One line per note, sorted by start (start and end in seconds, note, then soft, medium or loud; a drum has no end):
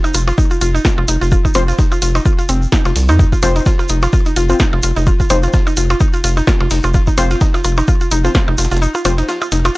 0.04 0.07 D#4 medium
0.04 snare soft
0.04 percussion blips medium
0.04 shaker soft
0.14 0.32 F1 medium
0.14 0.21 F4 medium
0.14 closed hi-hat loud
0.14 percussion blips medium
0.14 shaker loud
0.14 shaker medium
0.27 0.33 F4 medium
0.27 percussion blips medium
0.27 shaker soft
0.38 0.42 D#4 medium
0.38 kick loud
0.38 shaker medium
0.51 0.56 F4 medium
0.51 closed hi-hat soft
0.51 shaker soft
0.61 0.79 F1 loud
0.61 0.68 F4 medium
0.61 closed hi-hat loud
0.61 shaker medium
0.61 shaker loud
0.75 0.78 D#4 medium
0.75 shaker soft
0.85 0.91 F4 medium
0.85 kick loud
0.85 snare loud
0.85 shaker medium
0.98 1.05 F1 loud
0.98 1.03 F4 medium
0.98 snare soft
0.98 percussion blips medium
1.08 1.17 F1 loud
1.08 1.12 D#4 medium
1.08 closed hi-hat loud
1.08 shaker loud
1.08 shaker medium
1.21 1.37 F1 medium
1.21 1.26 F4 medium
1.21 closed hi-hat soft
1.21 shaker soft
1.31 1.38 F4 medium
1.31 kick loud
1.31 shaker medium
1.45 1.48 D#4 medium
1.45 kick medium
1.45 percussion blips medium
1.45 shaker soft
1.54 1.72 F1 loud
1.54 1.62 F3 loud
1.54 1.62 C4 medium
1.54 1.61 F4 medium
1.54 1.62 C5 loud
1.54 closed hi-hat loud
1.54 percussion blips medium
1.54 shaker medium
1.68 1.73 F4 medium
1.68 closed hi-hat soft
1.68 shaker soft
1.79 1.82 D#4 medium
1.79 kick loud
1.79 snare loud
1.79 shaker medium
1.92 1.97 F4 medium
1.92 percussion blips medium
1.92 shaker soft
2.02 2.19 F1 medium
2.02 2.08 F4 medium
2.02 closed hi-hat medium
2.02 shaker medium
2.02 shaker loud
2.15 2.18 D#4 medium
2.15 percussion blips medium
2.15 shaker soft
2.25 2.32 F4 medium
2.25 kick loud
2.25 shaker medium
2.39 2.44 F4 medium
2.39 closed hi-hat soft
2.39 shaker soft
2.49 2.66 F1 loud
2.49 2.58 C4 medium
2.49 closed hi-hat medium
2.49 shaker medium
2.62 shaker soft
2.72 2.82 D#4 medium
2.72 kick loud
2.72 snare loud
2.72 percussion blips medium
2.72 shaker medium
2.85 2.93 F1 medium
2.85 2.90 F4 medium
2.85 snare medium
2.85 percussion blips medium
2.85 shaker soft
2.96 3.10 C2 medium
2.96 snare medium
2.96 closed hi-hat loud
2.96 open hi-hat medium
2.96 shaker medium
3.08 3.24 F2 medium
3.08 3.14 D#4 loud
3.08 percussion blips medium
3.08 shaker soft
3.19 3.23 D#4 medium
3.19 kick loud
3.19 shaker medium
3.19 shaker soft
3.32 3.37 F4 medium
3.32 kick medium
3.32 shaker soft
3.43 3.60 F1 loud
3.43 3.54 F3 medium
3.43 3.54 C4 medium
3.43 3.49 F4 medium
3.43 3.54 C5 loud
3.43 closed hi-hat medium
3.43 percussion blips medium
3.43 shaker medium
3.56 3.59 D#4 medium
3.56 closed hi-hat soft
3.56 shaker soft
3.66 3.72 F4 medium
3.66 kick loud
3.66 snare loud
3.66 shaker soft
3.66 shaker medium
3.79 3.84 F4 medium
3.79 snare soft
3.79 percussion blips medium
3.79 shaker soft
3.89 4.07 F1 medium
3.89 3.93 D#4 medium
3.89 closed hi-hat medium
3.89 shaker medium
4.02 4.08 F4 medium
4.02 percussion blips medium
4.02 shaker soft
4.13 4.19 F4 medium
4.13 kick loud
4.13 shaker medium
4.26 4.29 D#4 medium
4.26 closed hi-hat soft
4.26 shaker soft
4.36 4.54 F1 medium
4.36 4.43 F4 medium
4.36 closed hi-hat medium
4.36 shaker medium
4.49 4.55 F3 medium
4.49 4.55 C4 medium
4.49 4.55 F4 medium
4.49 4.55 C5 medium
4.49 shaker soft
4.59 4.64 D#4 medium
4.59 kick loud
4.59 snare loud
4.59 shaker medium
4.73 4.80 F1 loud
4.73 4.78 F4 medium
4.73 snare soft
4.73 percussion blips medium
4.83 4.92 F1 loud
4.83 4.90 F4 medium
4.83 closed hi-hat medium
4.83 shaker loud
4.83 shaker medium
4.96 5.12 F1 medium
4.96 4.99 D#4 medium
4.96 closed hi-hat soft
4.96 shaker soft
5.06 5.13 F4 medium
5.06 kick loud
5.06 percussion blips medium
5.06 shaker soft
5.06 shaker medium
5.20 5.25 F4 medium
5.20 kick medium
5.20 shaker soft
5.30 5.47 F1 loud
5.30 5.38 F3 loud
5.30 5.37 C4 medium
5.30 5.34 D#4 medium
5.30 5.37 C5 loud
5.30 closed hi-hat medium
5.30 percussion blips medium
5.30 shaker loud
5.30 shaker medium
5.43 5.48 F4 medium
5.43 closed hi-hat soft
5.43 shaker soft
5.53 5.60 F4 medium
5.53 kick loud
5.53 snare loud
5.53 shaker medium
5.67 5.70 D#4 medium
5.67 percussion blips medium
5.67 shaker soft
5.77 5.94 F1 medium
5.77 5.83 F4 medium
5.77 closed hi-hat medium
5.77 shaker medium
5.90 5.95 F4 medium
5.90 percussion blips medium
5.90 shaker soft
6.00 6.04 D#4 medium
6.00 kick loud
6.00 shaker medium
6.13 6.19 F4 medium
6.13 closed hi-hat soft
6.13 shaker soft
6.24 6.41 F1 medium
6.24 6.30 F4 medium
6.24 closed hi-hat medium
6.24 shaker medium
6.37 6.40 D#4 medium
6.37 percussion blips medium
6.37 shaker soft
6.47 6.54 F4 medium
6.47 kick loud
6.47 snare loud
6.47 shaker medium
6.47 shaker soft
6.60 6.68 F1 loud
6.60 6.66 F4 medium
6.60 snare medium
6.60 percussion blips medium
6.71 6.80 F1 loud
6.71 6.75 D#4 medium
6.71 snare medium
6.71 closed hi-hat medium
6.71 open hi-hat medium
6.71 shaker medium
6.83 6.99 F1 medium
6.83 6.89 F4 medium
6.83 percussion blips medium
6.83 shaker soft
6.94 7.01 F4 medium
6.94 kick loud
6.94 shaker soft
6.94 shaker medium
7.07 7.10 D#4 medium
7.07 kick medium
7.07 shaker soft
7.18 7.35 F1 loud
7.18 7.29 F3 medium
7.18 7.29 C4 medium
7.18 7.24 F4 medium
7.18 7.29 C5 loud
7.18 closed hi-hat medium
7.18 percussion blips medium
7.18 shaker medium
7.31 7.36 F4 medium
7.31 closed hi-hat soft
7.31 shaker soft
7.41 7.45 D#4 medium
7.41 kick loud
7.41 snare loud
7.41 shaker soft
7.41 shaker medium
7.54 7.59 F4 medium
7.54 snare soft
7.54 percussion blips medium
7.54 shaker soft
7.64 7.82 F1 medium
7.64 7.71 F4 medium
7.64 closed hi-hat medium
7.64 percussion blips medium
7.64 shaker medium
7.77 7.81 D#4 medium
7.77 percussion blips medium
7.77 shaker soft
7.88 7.94 F4 medium
7.88 kick loud
7.88 shaker medium
8.01 8.06 F4 medium
8.01 closed hi-hat soft
8.01 shaker soft
8.11 8.29 F1 medium
8.11 8.15 D#4 medium
8.11 closed hi-hat medium
8.11 shaker medium
8.24 8.30 F3 medium
8.24 8.30 C4 medium
8.24 8.30 F4 medium
8.24 8.30 C5 medium
8.24 shaker soft
8.35 8.41 F4 medium
8.35 kick loud
8.35 snare loud
8.35 shaker medium
8.35 shaker soft
8.48 8.55 F1 loud
8.48 8.51 D#4 medium
8.48 snare soft
8.48 percussion blips medium
8.58 8.67 F1 loud
8.58 8.65 F4 medium
8.58 snare medium
8.58 closed hi-hat medium
8.58 shaker medium
8.65 snare medium
8.65 shaker medium
8.71 8.87 F1 medium
8.71 8.76 F4 medium
8.71 snare medium
8.71 shaker soft
8.71 shaker medium
8.77 snare medium
8.77 shaker medium
8.82 8.86 D#4 medium
8.82 shaker medium
8.95 9.00 F4 medium
8.95 percussion blips medium
8.95 shaker soft
9.05 9.22 F1 loud
9.05 9.12 F3 loud
9.05 9.12 C4 medium
9.05 9.11 F4 medium
9.05 9.12 C5 loud
9.05 closed hi-hat medium
9.05 percussion blips medium
9.05 shaker medium
9.18 9.21 D#4 medium
9.18 closed hi-hat soft
9.18 shaker soft
9.29 9.35 F4 medium
9.29 snare loud
9.29 shaker medium
9.42 9.47 F4 medium
9.42 percussion blips medium
9.42 shaker soft
9.52 9.69 F1 medium
9.52 9.56 D#4 medium
9.52 snare loud
9.52 closed hi-hat medium
9.52 shaker medium
9.65 9.70 F4 medium
9.65 closed hi-hat soft
9.65 percussion blips medium
9.65 shaker soft